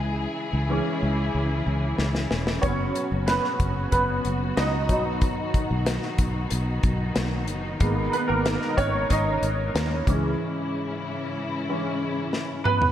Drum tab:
HH |----------------|x-x-x-x-x-x-x-x-|x-x-x-x-x-x-x-x-|x-x-x-x-x-x-x-x-|
SD |------------oooo|----oo------o---|----oo------o---|----oo------o---|
T2 |----------------|----------------|----------------|----------------|
FT |----------------|----------------|----------------|----------------|
BD |----------------|o-----o-o-----o-|o-o---o---o-----|o-----o-o-----o-|

HH |----------------|
SD |------------o---|
T2 |--------------o-|
FT |---------------o|
BD |----------------|